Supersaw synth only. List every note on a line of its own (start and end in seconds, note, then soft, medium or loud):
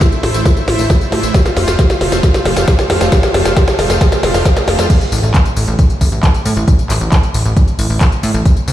0.01 0.17 A3 medium
0.01 0.17 E4 medium
0.01 0.17 C5 medium
0.01 0.17 E5 medium
0.23 0.39 A3 medium
0.23 0.39 E4 medium
0.23 0.39 C5 medium
0.23 0.39 E5 medium
0.45 0.61 A3 medium
0.45 0.61 E4 medium
0.45 0.61 C5 medium
0.45 0.61 E5 medium
0.68 0.83 A3 medium
0.68 0.83 E4 medium
0.68 0.83 C5 medium
0.68 0.83 E5 medium
0.90 1.05 A3 medium
0.90 1.05 E4 medium
0.90 1.05 C5 medium
0.90 1.05 E5 medium
1.12 1.28 A3 medium
1.12 1.28 E4 medium
1.12 1.28 C5 medium
1.12 1.28 E5 medium
1.34 1.50 A3 loud
1.34 1.50 F4 loud
1.34 1.50 C5 loud
1.34 1.50 F5 medium
1.56 1.72 A3 medium
1.56 1.72 F4 medium
1.56 1.72 C5 medium
1.56 1.72 F5 medium
1.79 1.94 A3 medium
1.79 1.94 F4 loud
1.79 1.94 C5 medium
1.79 1.94 F5 loud
2.01 2.17 A3 medium
2.01 2.17 F4 medium
2.01 2.17 C5 medium
2.01 2.17 F5 medium
2.23 2.39 A3 medium
2.23 2.39 F4 medium
2.23 2.39 C5 medium
2.23 2.39 F5 medium
2.45 2.61 A3 medium
2.45 2.61 F4 medium
2.45 2.61 C5 medium
2.45 2.61 F5 medium
2.68 2.83 A3 medium
2.68 2.83 F4 medium
2.68 2.83 C5 medium
2.68 2.83 F5 medium
2.90 3.05 A3 medium
2.90 3.05 F4 medium
2.90 3.05 C5 medium
2.90 3.05 F5 medium
3.12 3.28 A3 medium
3.12 3.28 F4 medium
3.12 3.28 C5 loud
3.12 3.28 F5 medium
3.34 3.50 A3 medium
3.34 3.50 F4 medium
3.34 3.50 C5 medium
3.34 3.50 F5 medium
3.56 3.72 A3 medium
3.56 3.72 F4 medium
3.56 3.72 C5 loud
3.56 3.72 F5 medium
3.79 3.94 A3 medium
3.79 3.94 F4 medium
3.79 3.94 C5 medium
3.79 3.94 F5 medium
4.01 4.17 A3 medium
4.01 4.17 F4 medium
4.01 4.17 C5 medium
4.01 4.17 F5 medium
4.23 4.39 A3 medium
4.23 4.39 F4 medium
4.23 4.39 C5 medium
4.23 4.39 F5 medium
4.46 4.61 A3 medium
4.46 4.61 F4 medium
4.46 4.61 C5 medium
4.46 4.61 F5 medium
4.68 4.83 A3 medium
4.68 4.83 F4 medium
4.68 4.83 C5 medium
4.68 4.83 F5 medium